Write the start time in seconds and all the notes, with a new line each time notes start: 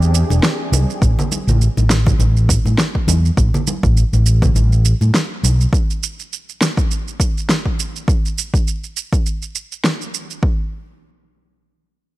Already playing: E2 E3 C4 D4 G4 G#4
0.02 shaker
0.14 shaker
0.30 E1, high conga, shaker
0.43 snare, shaker
0.72 C2, high conga, shaker
0.90 shaker
1.02 A1, kick, shaker
1.19 low conga, shaker
1.32 high conga, shaker
1.47 A1, low conga, shaker
1.61 shaker
1.77 A1, high conga, shaker
1.90 snare, shaker
2.06 kick, low conga, shaker
2.19 A1, high conga, shaker
2.37 shaker
2.49 kick, shaker
2.65 A2, high conga, shaker
2.78 snare, shaker
2.95 kick
3.07 E2, high conga, shaker
3.25 shaker
3.37 A1, kick, shaker
3.54 low conga, shaker
3.67 high conga, shaker
3.83 A1, kick, shaker
3.97 shaker
4.13 A1, high conga, shaker
4.26 shaker
4.42 kick, low conga, shaker
4.55 A1, high conga, shaker
4.72 shaker
4.85 shaker
5.01 A2, high conga, shaker
5.14 snare, shaker
5.43 B1, high conga, shaker
5.61 shaker
5.73 kick, shaker
5.90 shaker
6.03 shaker
6.19 shaker
6.33 shaker
6.49 shaker
6.61 snare, shaker
6.77 kick, shaker
6.91 shaker
7.08 shaker
7.20 kick, shaker
7.38 shaker
7.49 snare, shaker
7.66 kick
7.79 shaker
7.96 shaker
8.08 kick, shaker
8.25 shaker
8.38 shaker
8.54 kick, shaker
8.68 shaker
8.84 shaker
8.97 shaker
9.13 kick, shaker
9.26 shaker
9.42 shaker
9.55 shaker
9.72 shaker
9.84 snare, shaker
10.02 shaker
10.14 shaker
10.31 shaker
10.43 kick